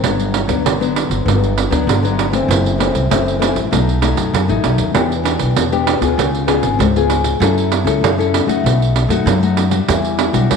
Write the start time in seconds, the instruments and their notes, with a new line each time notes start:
0.04 upright bass G1, nylon-string guitar G2 F#3 B3 D4, pandeiro
0.20 pandeiro
0.34 pandeiro
0.48 upright bass D2, nylon-string guitar F#3 B3 D4, pandeiro
0.65 upright bass G1, nylon-string guitar D3, pandeiro
0.80 nylon-string guitar F#3 B3 D4, pandeiro
0.96 pandeiro
1.10 upright bass G1, pandeiro
1.25 upright bass G1, nylon-string guitar G2 F#3 B3 D4, pandeiro
1.44 pandeiro
1.58 pandeiro
1.70 upright bass D2, nylon-string guitar F#3 B3 D4, pandeiro
1.87 upright bass G1, nylon-string guitar D3, pandeiro
2.03 nylon-string guitar F#3 B3 D4, pandeiro
2.19 pandeiro
2.32 nylon-string guitar E3 A3 C4, pandeiro
2.48 upright bass F#1, nylon-string guitar F#2, pandeiro
2.66 pandeiro
2.78 nylon-string guitar E3 A3 C4, pandeiro
2.94 upright bass C2, pandeiro
3.10 upright bass F#1, nylon-string guitar F#2 E3 A3 C4, pandeiro
3.28 pandeiro
3.39 nylon-string guitar E3 A3 C4, pandeiro
3.55 upright bass A1, pandeiro
3.71 upright bass B1, nylon-string guitar B2 F#3 A3 D#4, pandeiro
3.89 pandeiro
4.01 nylon-string guitar F#3 A3 D#4, pandeiro
4.16 upright bass F#2, pandeiro
4.33 nylon-string guitar F#2, upright bass F#2, pandeiro
4.48 upright bass A1, nylon-string guitar F#3 A3 D#4, pandeiro
4.64 upright bass B1, pandeiro
4.78 upright bass D#2, pandeiro
4.94 upright bass E2, nylon-string guitar E3 B3 D4 G4, pandeiro
5.12 pandeiro
5.24 nylon-string guitar B3 D4 G4, pandeiro
5.39 upright bass B1, pandeiro
5.56 upright bass E2, nylon-string guitar B2, pandeiro
5.72 nylon-string guitar B3 D4 G4, pandeiro
5.87 pandeiro
6.01 upright bass D2, nylon-string guitar B3 F4 G#4, pandeiro
6.18 upright bass C#2, nylon-string guitar C#3, pandeiro
6.35 pandeiro
6.47 nylon-string guitar B3 F4 G#4, pandeiro
6.63 upright bass G#1, pandeiro
6.79 upright bass C#2, nylon-string guitar G#2, pandeiro
6.96 nylon-string guitar B3 F4 G#4, pandeiro
7.10 pandeiro
7.24 pandeiro
7.40 upright bass F#2, nylon-string guitar F#3 C#4 E4 A4, pandeiro
7.58 pandeiro
7.72 pandeiro
7.84 upright bass C#2, nylon-string guitar C#4 E4 A4, pandeiro
8.01 upright bass F#2, nylon-string guitar C#3, pandeiro
8.18 nylon-string guitar C#4 E4 A4, pandeiro
8.34 pandeiro
8.47 upright bass F#2, nylon-string guitar A3 D#4 F#4, pandeiro
8.64 upright bass B1, nylon-string guitar B2, pandeiro
8.82 pandeiro
8.96 pandeiro
9.09 upright bass F#2, nylon-string guitar A3 D#4 F#4, pandeiro
9.26 upright bass F#2, nylon-string guitar F#3, pandeiro
9.42 nylon-string guitar A3 D#4 F#4, pandeiro
9.57 pandeiro
9.71 nylon-string guitar G3 D4 F#4, pandeiro
9.88 upright bass E2, nylon-string guitar E3, pandeiro
10.05 pandeiro
10.19 pandeiro
10.33 upright bass B1, nylon-string guitar G3 D4 F#4, pandeiro
10.50 upright bass E2, nylon-string guitar B2, pandeiro